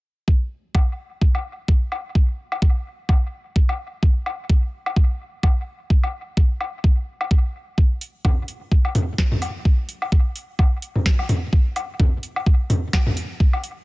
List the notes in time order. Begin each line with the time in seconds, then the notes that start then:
0.28 kick
0.75 kick, low woodblock
1.21 kick
1.35 low woodblock
1.68 kick
1.92 low woodblock
2.15 kick
2.52 low woodblock
2.62 kick
3.09 kick, low woodblock
3.56 kick
3.69 low woodblock
4.03 kick
4.26 low woodblock
4.50 kick
4.86 low woodblock
4.96 kick
5.43 kick, low woodblock
5.90 kick
6.03 low woodblock
6.37 kick
6.61 low woodblock
6.84 kick
7.21 low woodblock
7.31 kick
7.78 kick
8.01 open hi-hat
8.25 kick, mid tom, low woodblock
8.48 open hi-hat
8.72 kick
8.85 low woodblock
8.95 mid tom, open hi-hat
9.18 kick, snare
9.32 mid tom
9.42 open hi-hat, low woodblock
9.65 kick
9.89 open hi-hat
10.02 low woodblock
10.12 kick
10.36 open hi-hat
10.59 kick, low woodblock
10.82 open hi-hat
10.96 mid tom
11.06 kick, snare
11.19 low woodblock
11.29 mid tom, open hi-hat
11.53 kick
11.76 open hi-hat, low woodblock
12.00 kick, mid tom
12.23 open hi-hat
12.36 low woodblock
12.46 kick
12.70 mid tom, open hi-hat
12.93 kick, snare, low woodblock
13.06 mid tom
13.17 open hi-hat
13.40 kick
13.53 low woodblock
13.64 open hi-hat